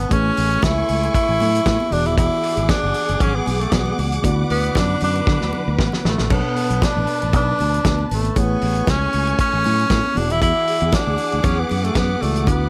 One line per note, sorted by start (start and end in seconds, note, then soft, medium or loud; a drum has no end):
0.00 0.13 B2 medium
0.00 0.13 B3 soft
0.00 0.14 B3 medium
0.00 0.13 D4 medium
0.00 0.12 A4 soft
0.00 0.12 C#5 medium
0.09 0.30 A1 loud
0.09 1.87 A3 medium
0.09 1.90 A3 medium
0.09 0.65 C#4 loud
0.09 1.88 E4 soft
0.09 1.88 G#4 medium
0.09 1.88 B4 medium
0.09 1.89 C#5 medium
0.09 1.90 G#5 medium
0.09 1.90 C#6 medium
0.09 kick loud
0.09 closed hi-hat medium
0.09 muted conga medium
0.37 0.56 A1 loud
0.37 open hi-hat medium
0.51 closed hi-hat soft
0.62 0.81 C#2 loud
0.62 1.14 E4 loud
0.62 kick loud
0.62 snare medium
0.62 closed hi-hat medium
0.62 high conga medium
0.88 1.08 C#2 medium
0.88 open hi-hat medium
1.03 closed hi-hat soft
1.14 1.94 E4 loud
1.14 kick loud
1.14 closed hi-hat medium
1.14 muted conga soft
1.29 1.37 A1 medium
1.40 1.59 A2 medium
1.40 open hi-hat medium
1.40 muted conga soft
1.40 low conga medium
1.55 closed hi-hat soft
1.66 1.76 A2 medium
1.66 kick medium
1.66 snare loud
1.66 closed hi-hat medium
1.66 high conga medium
1.80 high conga medium
1.90 2.06 E1 loud
1.90 3.68 E3 medium
1.90 3.69 B3 medium
1.90 2.08 D4 medium
1.90 3.69 F#4 medium
1.90 4.22 G#4 medium
1.90 3.69 G#4 medium
1.90 3.70 D5 medium
1.90 6.26 F#5 medium
1.90 6.26 D6 medium
1.90 open hi-hat medium
1.90 high conga medium
2.06 2.18 D#1 medium
2.06 2.17 E4 loud
2.06 closed hi-hat soft
2.18 2.28 E1 loud
2.18 2.71 E4 loud
2.18 kick loud
2.18 closed hi-hat medium
2.18 muted conga medium
2.43 open hi-hat medium
2.57 2.66 G#1 medium
2.57 closed hi-hat soft
2.69 3.23 D4 medium
2.69 kick loud
2.69 snare medium
2.69 closed hi-hat medium
2.69 high conga medium
2.83 2.92 F#1 medium
2.94 open hi-hat medium
3.09 3.18 F#1 medium
3.09 closed hi-hat soft
3.20 3.39 G#1 medium
3.20 3.36 C#4 medium
3.20 kick loud
3.20 closed hi-hat medium
3.20 muted conga soft
3.20 low conga medium
3.35 3.62 B3 medium
3.46 3.65 B1 medium
3.46 open hi-hat medium
3.46 muted conga soft
3.61 3.75 A3 medium
3.61 closed hi-hat soft
3.71 3.91 B1 medium
3.71 4.23 E3 soft
3.71 4.21 B3 soft
3.71 3.99 B3 medium
3.71 4.23 F#4 soft
3.71 4.24 G#4 soft
3.71 4.24 D5 medium
3.71 kick medium
3.71 snare loud
3.71 closed hi-hat medium
3.71 high conga medium
3.86 high conga medium
3.98 4.17 C#2 medium
3.98 open hi-hat medium
3.98 high conga soft
4.12 closed hi-hat soft
4.22 4.42 D2 loud
4.22 6.25 D3 medium
4.22 6.25 B3 medium
4.22 6.26 E4 medium
4.22 6.26 F#4 medium
4.22 6.28 B4 medium
4.22 6.27 D5 medium
4.22 kick medium
4.22 closed hi-hat medium
4.22 muted conga medium
4.50 4.69 D2 medium
4.50 4.79 B3 medium
4.50 open hi-hat medium
4.64 closed hi-hat soft
4.75 4.94 F#2 medium
4.75 5.02 D4 loud
4.75 kick loud
4.75 snare medium
4.75 closed hi-hat medium
4.75 high conga medium
5.00 5.20 F#2 medium
5.00 5.76 D4 medium
5.00 open hi-hat medium
5.15 closed hi-hat soft
5.27 5.37 D3 medium
5.27 kick loud
5.27 snare medium
5.27 low conga medium
5.41 5.50 D2 medium
5.41 snare soft
5.53 muted conga soft
5.53 low conga medium
5.68 5.76 D2 medium
5.79 5.88 A1 medium
5.79 kick medium
5.79 snare medium
5.79 high conga medium
5.92 snare medium
5.92 high conga medium
6.04 6.15 A1 loud
6.04 6.35 A3 medium
6.04 snare medium
6.04 high conga soft
6.18 6.27 A#1 medium
6.18 snare medium
6.29 6.40 B1 medium
6.29 8.31 B2 medium
6.29 8.32 B3 medium
6.29 8.32 D4 medium
6.29 8.33 A4 soft
6.29 8.34 B4 medium
6.29 8.33 C#5 medium
6.29 8.34 A5 medium
6.29 kick loud
6.29 crash medium
6.29 muted conga medium
6.34 6.86 B3 medium
6.56 open hi-hat medium
6.70 6.79 B1 medium
6.70 closed hi-hat soft
6.82 7.35 D4 medium
6.82 kick loud
6.82 snare medium
6.82 closed hi-hat medium
6.82 high conga medium
6.97 7.05 A1 medium
7.07 open hi-hat medium
7.22 7.34 A1 medium
7.22 closed hi-hat soft
7.33 7.52 B1 medium
7.33 8.08 D4 loud
7.33 kick loud
7.33 closed hi-hat medium
7.33 muted conga soft
7.33 low conga medium
7.59 7.78 D2 medium
7.59 open hi-hat medium
7.59 muted conga soft
7.74 closed hi-hat soft
7.85 8.03 D2 loud
7.85 kick loud
7.85 snare loud
7.85 closed hi-hat medium
7.85 high conga medium
7.99 high conga medium
8.10 8.29 G#1 loud
8.10 8.40 A3 medium
8.10 open hi-hat medium
8.10 high conga medium
8.25 closed hi-hat soft
8.35 8.55 A1 medium
8.35 10.12 A3 medium
8.35 10.15 A3 medium
8.35 8.91 B3 medium
8.35 10.12 E4 medium
8.35 10.13 G#4 medium
8.35 10.13 B4 soft
8.35 10.13 C#5 medium
8.35 10.15 G#5 medium
8.35 10.15 C#6 medium
8.35 kick medium
8.35 closed hi-hat medium
8.35 muted conga medium
8.61 8.81 A1 medium
8.61 open hi-hat medium
8.75 closed hi-hat soft
8.87 9.06 C#2 medium
8.87 9.40 C#4 medium
8.87 kick loud
8.87 snare loud
8.87 closed hi-hat medium
8.87 high conga medium
9.13 9.32 C#2 medium
9.13 open hi-hat medium
9.27 closed hi-hat soft
9.39 10.19 C#4 loud
9.39 kick loud
9.39 closed hi-hat medium
9.54 9.62 A1 medium
9.64 9.84 A2 medium
9.64 open hi-hat medium
9.64 muted conga soft
9.64 low conga medium
9.79 closed hi-hat soft
9.90 10.00 A2 medium
9.90 kick loud
9.90 snare loud
9.90 closed hi-hat medium
9.90 high conga medium
10.04 high conga medium
10.14 10.30 E1 loud
10.14 12.17 E3 medium
10.14 10.33 D4 loud
10.14 12.17 E4 medium
10.14 12.18 F#4 medium
10.14 12.45 G#4 medium
10.14 12.18 G#4 medium
10.14 12.18 D5 medium
10.14 12.69 F#5 medium
10.14 12.69 D6 medium
10.14 open hi-hat medium
10.14 high conga soft
10.30 10.39 D#1 medium
10.30 10.42 E4 loud
10.30 closed hi-hat soft
10.42 10.51 E2 medium
10.42 10.96 E4 loud
10.42 kick medium
10.42 closed hi-hat medium
10.42 muted conga soft
10.67 open hi-hat medium
10.80 10.90 E2 medium
10.80 closed hi-hat soft
10.92 11.47 D4 loud
10.92 kick loud
10.92 snare loud
10.92 closed hi-hat medium
10.92 high conga medium
11.07 11.16 D2 medium
11.18 open hi-hat medium
11.32 11.42 D2 medium
11.32 closed hi-hat soft
11.44 11.62 E2 medium
11.44 11.61 C#4 medium
11.44 kick loud
11.44 closed hi-hat medium
11.44 low conga medium
11.59 11.86 B3 medium
11.69 11.89 F#2 medium
11.69 open hi-hat medium
11.69 muted conga soft
11.84 11.97 A3 medium
11.84 closed hi-hat soft
11.95 12.14 F#2 medium
11.95 12.23 B3 medium
11.95 kick loud
11.95 snare loud
11.95 closed hi-hat medium
11.95 high conga medium
12.09 high conga medium
12.21 12.47 C#2 medium
12.21 12.47 E3 soft
12.21 12.50 A3 medium
12.21 12.47 E4 soft
12.21 12.47 F#4 soft
12.21 12.48 G#4 soft
12.21 12.48 D5 medium
12.21 open hi-hat medium
12.21 high conga soft
12.36 closed hi-hat soft
12.46 12.66 D2 medium
12.46 12.69 D3 medium
12.46 12.69 B3 medium
12.46 12.69 D4 medium
12.46 12.69 E4 medium
12.46 12.69 F#4 medium
12.46 12.69 B4 medium
12.46 kick loud
12.46 closed hi-hat medium
12.46 muted conga medium